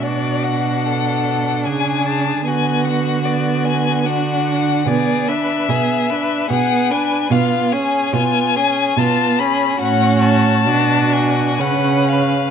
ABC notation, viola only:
X:1
M:3/4
L:1/8
Q:1/4=73
K:Bdor
V:1 name="Viola"
D6 | B,2 B,2 D2 | [K:C#phr] B, D B, D B, D | B, C B, C B, C |
C2 D2 C2 |]